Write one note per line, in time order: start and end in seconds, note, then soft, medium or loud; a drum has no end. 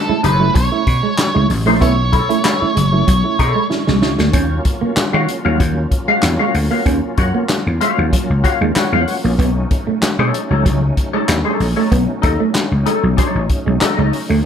0.00 0.20 A4 medium
0.08 0.18 G#3 medium
0.08 0.20 A3 medium
0.08 0.20 C#4 medium
0.08 0.20 E4 medium
0.08 muted slap bass stroke soft
0.23 0.48 F#1 medium
0.23 0.37 B2 medium
0.23 0.37 F#3 medium
0.23 0.44 E4 medium
0.23 0.45 A4 loud
0.23 0.54 B4 medium
0.23 0.45 C#5 medium
0.23 muted clean electric guitar stroke soft
0.23 closed hi-hat medium
0.40 0.49 F#3 medium
0.40 0.52 A3 medium
0.40 0.52 C#4 medium
0.40 0.52 E4 medium
0.54 0.68 B1 medium
0.54 0.68 B2 medium
0.54 0.65 F#3 medium
0.54 0.68 F#3 medium
0.54 1.46 C#5 loud
0.54 kick loud
0.54 closed hi-hat medium
0.72 0.83 A3 medium
0.72 0.84 C#4 medium
0.72 0.84 E4 medium
0.72 muted clean electric guitar stroke soft
0.87 1.00 B2 medium
0.87 kick medium
0.87 closed hi-hat medium
1.03 1.12 G#3 medium
1.18 snare loud
1.18 clap medium
1.18 closed hi-hat medium
1.35 1.47 C#2 medium
1.35 1.44 G#3 medium
1.35 1.46 A3 medium
1.35 1.46 C#4 medium
1.35 1.46 E4 medium
1.50 1.67 A1 medium
1.50 1.63 B2 medium
1.50 1.63 F#3 medium
1.50 muted clean electric guitar stroke soft
1.50 open hi-hat medium
1.66 1.81 A#1 medium
1.66 1.75 A3 medium
1.66 1.78 A3 medium
1.66 1.78 C#4 medium
1.66 1.78 E4 medium
1.66 1.87 E4 medium
1.66 1.87 A4 medium
1.66 1.86 C#5 medium
1.81 2.19 B1 loud
1.81 1.94 A3 medium
1.81 1.91 B3 medium
1.81 1.94 C#4 medium
1.81 1.95 E4 medium
1.81 3.67 C#5 loud
1.81 kick loud
1.81 closed hi-hat loud
2.13 2.26 B2 medium
2.13 2.26 F#3 medium
2.13 2.29 E4 medium
2.13 2.30 A4 medium
2.13 2.30 C#5 loud
2.13 muted clean electric guitar stroke soft
2.13 kick medium
2.13 closed hi-hat medium
2.29 2.41 A3 medium
2.29 2.38 A3 medium
2.29 2.41 C#4 medium
2.29 2.41 E4 medium
2.29 closed hi-hat soft
2.44 2.61 E4 medium
2.44 2.61 A4 loud
2.44 2.61 C#5 medium
2.44 muted clean electric guitar stroke soft
2.44 snare loud
2.44 clap loud
2.44 closed hi-hat medium
2.61 2.73 A3 medium
2.61 2.73 C#4 medium
2.61 2.73 E4 medium
2.61 muted slap bass stroke medium
2.75 3.01 F#1 medium
2.75 2.89 B2 medium
2.75 2.89 F#3 medium
2.75 2.85 G#3 medium
2.75 closed hi-hat medium
2.92 3.01 F#3 medium
2.92 3.04 A3 medium
2.92 3.04 C#4 medium
2.92 3.04 E4 medium
3.07 3.21 B1 medium
3.07 3.21 B2 medium
3.07 3.17 F#3 medium
3.07 3.20 F#3 medium
3.07 kick medium
3.07 closed hi-hat loud
3.24 3.36 A3 medium
3.24 3.36 C#4 medium
3.24 3.36 E4 medium
3.24 muted clean electric guitar stroke soft
3.39 3.52 B2 loud
3.39 3.60 E4 medium
3.39 3.60 A4 medium
3.39 3.61 C#5 medium
3.39 kick medium
3.39 closed hi-hat medium
3.55 3.64 G#3 medium
3.70 3.83 C#4 medium
3.70 3.83 E4 medium
3.70 snare medium
3.87 4.02 C2 medium
3.87 3.99 B2 medium
3.87 3.99 F#3 medium
3.87 3.96 G#3 medium
3.87 snare medium
4.01 4.15 C#2 medium
4.01 4.15 C#4 medium
4.01 4.15 E4 medium
4.01 muted clean electric guitar stroke soft
4.01 snare medium
4.18 4.31 D2 medium
4.18 4.28 A3 medium
4.18 snare medium
4.33 4.58 D#2 loud
4.33 14.45 F#3 medium
4.33 9.35 A#3 medium
4.33 4.43 C#4 loud
4.33 14.41 C#4 medium
4.33 9.35 F4 medium
4.33 kick loud
4.33 closed hi-hat loud
4.65 muted clean electric guitar stroke soft
4.65 kick medium
4.65 closed hi-hat medium
4.81 4.90 A#3 medium
4.81 muted slap bass stroke soft
4.96 muted slap bass stroke soft
4.96 snare loud
4.96 clap loud
4.96 closed hi-hat medium
5.13 5.26 D#3 medium
5.13 5.22 G#3 medium
5.13 5.29 F#4 medium
5.13 5.28 C#5 medium
5.13 5.28 F5 medium
5.28 muted clean electric guitar stroke soft
5.28 closed hi-hat medium
5.45 5.57 D#2 loud
5.45 5.54 F#3 medium
5.45 5.57 F#4 medium
5.45 5.57 C#5 medium
5.45 5.56 F5 medium
5.60 5.85 D#2 medium
5.60 5.70 F#3 medium
5.60 kick medium
5.60 closed hi-hat medium
5.77 muted clean electric guitar stroke soft
5.91 kick medium
5.91 closed hi-hat medium
6.08 6.17 G#3 medium
6.08 6.23 F#4 medium
6.08 6.23 C#5 medium
6.08 6.23 F5 medium
6.23 6.37 E2 medium
6.23 snare loud
6.23 clap medium
6.23 closed hi-hat loud
6.39 6.49 G#3 medium
6.39 6.55 F#4 medium
6.39 6.55 C#5 medium
6.39 6.54 F5 medium
6.54 6.68 D2 medium
6.54 muted clean electric guitar stroke soft
6.54 open hi-hat medium
6.71 6.80 A#3 medium
6.71 6.84 F#4 medium
6.71 6.83 C#5 medium
6.71 6.83 F5 medium
6.86 6.99 D#2 loud
6.86 6.96 C#4 medium
6.86 kick loud
6.86 closed hi-hat loud
7.17 7.31 F#2 medium
7.17 7.34 F#4 medium
7.17 7.35 C#5 medium
7.17 7.35 F#5 medium
7.17 muted clean electric guitar stroke soft
7.17 kick loud
7.17 closed hi-hat medium
7.34 7.43 A#3 medium
7.49 muted clean electric guitar stroke soft
7.49 snare loud
7.49 clap medium
7.49 closed hi-hat medium
7.67 7.78 E2 medium
7.81 7.91 G#3 medium
7.81 8.02 F#4 medium
7.81 8.02 C#5 medium
7.81 8.03 F5 medium
7.81 closed hi-hat medium
7.98 8.10 D#2 medium
7.98 8.07 F#3 medium
8.13 8.23 F#3 medium
8.13 kick medium
8.13 closed hi-hat loud
8.30 8.42 C#2 medium
8.30 muted clean electric guitar stroke soft
8.44 8.60 F#4 medium
8.44 8.61 C#5 medium
8.44 8.61 F5 medium
8.44 kick medium
8.44 closed hi-hat medium
8.61 8.73 D#2 medium
8.61 8.70 G#3 medium
8.76 8.89 F#4 medium
8.76 8.89 C#5 medium
8.76 8.90 F#5 medium
8.76 muted slap bass stroke soft
8.76 snare loud
8.76 clap medium
8.76 closed hi-hat loud
8.92 9.04 E2 medium
8.92 9.02 G#3 medium
8.92 9.13 F#4 medium
8.92 9.12 C#5 medium
8.92 9.12 F#5 medium
9.07 muted clean electric guitar stroke soft
9.07 open hi-hat medium
9.24 9.36 A#1 medium
9.24 9.33 A#3 medium
9.38 9.64 B1 loud
9.38 14.41 A3 medium
9.38 9.49 B3 loud
9.38 14.41 D#4 medium
9.38 kick loud
9.38 closed hi-hat loud
9.71 muted clean electric guitar stroke soft
9.71 kick loud
9.71 closed hi-hat medium
9.87 9.96 A3 medium
9.87 muted slap bass stroke soft
10.02 muted slap bass stroke soft
10.02 snare loud
10.02 clap loud
10.02 closed hi-hat medium
10.19 10.31 B2 loud
10.19 10.28 G#3 medium
10.19 10.39 D#4 medium
10.19 10.39 A4 medium
10.19 10.39 C#5 medium
10.34 muted clean electric guitar stroke soft
10.34 closed hi-hat medium
10.50 10.62 C#2 medium
10.50 10.60 F#3 medium
10.50 10.63 D#4 medium
10.50 10.63 A4 medium
10.50 10.62 C#5 medium
10.65 10.90 C#2 medium
10.65 10.75 F#3 medium
10.65 kick medium
10.65 closed hi-hat medium
10.82 muted clean electric guitar stroke soft
10.97 kick medium
10.97 closed hi-hat medium
11.13 11.23 G#3 medium
11.13 11.29 D#4 medium
11.13 11.29 A4 medium
11.13 11.28 C#5 medium
11.29 11.42 D#2 medium
11.29 snare loud
11.29 clap medium
11.29 closed hi-hat loud
11.45 11.54 G#3 medium
11.45 11.66 D#4 medium
11.45 11.65 A4 medium
11.45 11.65 C#5 medium
11.60 11.73 A#1 medium
11.60 muted clean electric guitar stroke soft
11.60 open hi-hat medium
11.76 11.86 A3 medium
11.76 11.89 D#4 medium
11.76 11.89 A4 medium
11.76 11.88 C#5 medium
11.92 12.05 B1 loud
11.92 12.02 B3 loud
11.92 kick loud
11.92 closed hi-hat medium
12.22 12.37 D#2 loud
12.22 12.39 D#4 medium
12.22 12.40 A4 medium
12.22 12.40 D#5 medium
12.22 muted clean electric guitar stroke soft
12.22 kick medium
12.22 closed hi-hat medium
12.40 12.49 A3 medium
12.55 muted clean electric guitar stroke soft
12.55 snare loud
12.55 clap medium
12.55 closed hi-hat medium
12.72 12.83 C#2 medium
12.86 12.97 G#3 medium
12.86 13.03 D#4 medium
12.86 13.03 A4 medium
12.86 13.04 C#5 medium
12.86 closed hi-hat medium
13.03 13.15 B1 medium
13.03 13.13 F#3 medium
13.17 13.28 F#3 medium
13.17 13.39 D#4 medium
13.17 13.39 A4 medium
13.17 13.40 C#5 medium
13.17 kick loud
13.17 closed hi-hat loud
13.35 13.47 A1 medium
13.35 muted clean electric guitar stroke soft
13.49 kick medium
13.49 closed hi-hat medium
13.66 13.79 B1 medium
13.66 13.75 G#3 medium
13.81 13.94 D#4 medium
13.81 13.94 A4 medium
13.81 13.95 D#5 medium
13.81 muted slap bass stroke soft
13.81 snare loud
13.81 clap medium
13.81 closed hi-hat medium
13.97 14.10 C#2 medium
13.97 14.07 G#3 medium
13.97 14.13 D#4 medium
13.97 14.13 A4 medium
13.97 14.12 D#5 medium
14.13 muted clean electric guitar stroke soft
14.13 open hi-hat medium
14.30 14.42 D2 medium
14.30 14.39 A3 medium